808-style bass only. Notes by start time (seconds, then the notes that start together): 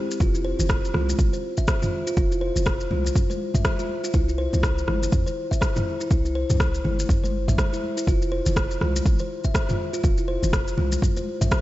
0.20 F1
0.59 F1
0.94 C2
1.19 G#1
2.17 F1
2.56 F1
2.91 C2
4.14 C2
4.53 C2
4.88 G1
5.12 E2
6.11 C2
6.50 C2
6.84 G1
7.09 G1
7.58 G1
8.07 F1
8.46 F1
8.81 C2
9.05 G#1
10.04 F1
10.43 F1
10.78 C2